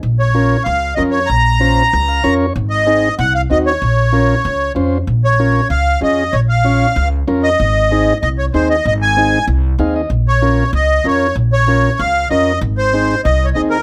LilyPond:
<<
  \new Staff \with { instrumentName = "Accordion" } { \time 4/4 \key bes \minor \tempo 4 = 191 r8 des''4. f''4 ees''8 des''8 | bes''2.~ bes''8 r8 | r8 ees''4. ges''8 f''8 ees''8 des''8~ | des''2. r4 |
r8 des''4. f''4 ees''4 | des''8 f''2 r4 ees''8~ | ees''2 ees''8 des''8 c''8 ees''8 | ees''8 aes''4. r2 |
r8 des''4. ees''4 des''4 | r8 des''4. f''4 ees''4 | r8 c''4. \tuplet 3/2 { ees''4 des''8 } ees''8 bes'8 | }
  \new Staff \with { instrumentName = "Transistor combo organ" } { \time 4/4 \key bes \minor << { r1 | r2 r8 f''8 des''4 | r1 | r1 |
r1 | r1 | r1 | r2. f''8 ees''8 |
r1 | r1 | r1 | } \\ { r4 <des' f' bes'>8 r4. <des' f' bes'>8 r8 | r4 <des' f' c''>8 r4. <des' f' bes'>8 r8 | r4 <c' ees' aes'>8 r4. <c' ees' ges'>8 r8 | r4 <des' f' bes'>8 r4. <des' f' c''>8 r8 |
r4 <des' f' bes'>8 r4. <des' f' aes'>8 r8 | r4 <des' f' des''>8 r4. <des' f' bes'>8 r8 | r4 <c' ees' aes'>8 r4. <c' ees' aes'>8 r8 | r4 <c' ees' aes'>8 r4. <c' ees' aes'>8 r8 |
r4 <des' f' bes'>8 r4. <des' f' bes'>8 r8 | r4 <des' f' bes'>8 r4. <des' f' bes'>8 r8 | r4 <c' ees' aes'>8 r4. <c' ees' aes'>8 r8 | } >> }
  \new Staff \with { instrumentName = "Upright bass" } { \clef bass \time 4/4 \key bes \minor bes,,2 des,4 f,4 | bes,,2 des,4 f,4 | aes,,2 c,4 ees,4 | bes,,2 des,4 f,4 |
bes,,2 des,4 f,4 | bes,,2 des,4 f,4 | aes,,2 c,4 ees,4 | aes,,2 c,4 ees,4 |
bes,,2 des,4 f,4 | bes,,2 des,4 f,4 | aes,,2 c,4 ees,4 | }
>>